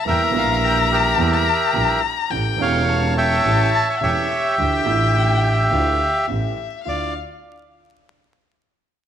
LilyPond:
<<
  \new Staff \with { instrumentName = "Violin" } { \time 4/4 \key d \minor \tempo 4 = 106 bes''1 | g''4 a''2 e''4 | g''2 f''4 e''4 | f''8 r2. r8 | }
  \new Staff \with { instrumentName = "Bandoneon" } { \time 4/4 \key d \minor << { g''8 f''16 f''16 g''8 e''2 r8 | r8 f''4 g''4 a''16 cis''16 e''4~ | e''2. r4 | d''8 r2. r8 | } \\ { <bes' e''>4. <g' bes'>2 r8 | r8 cis''4 <cis'' e''>4. <g' cis''>4~ | <g' cis''>2. r4 | r1 | } >> }
  \new Staff \with { instrumentName = "Upright piano" } { \clef bass \time 4/4 \key d \minor <e, e g bes g'>8 <bes,, bes, e g bes g'>4. <e, e g bes g'>8 r8 <bes,, bes, e g bes g'>8 r8 | <a,, a, e a cis' g'>8 <e,, e, e a cis' g'>4. <a,, a, e a cis' g'>8 r8 <e,, e, e a cis' g'>8 r8 | <d, d e a d' f'>8 <a,, a, a d' e' f'>4. <d, d e a d' f'>8 r8 <a,, a, e a cis' g'>8 r8 | <d, d' e' f'>8 r2. r8 | }
  \new Staff \with { instrumentName = "Double bass" } { \clef bass \time 4/4 \key d \minor e,8 bes,,4. e,8 r8 bes,,8 r8 | a,,8 e,,4. a,,8 r8 e,,8 r8 | d,8 a,,4. d,8 r8 a,,8 r8 | d,8 r2. r8 | }
>>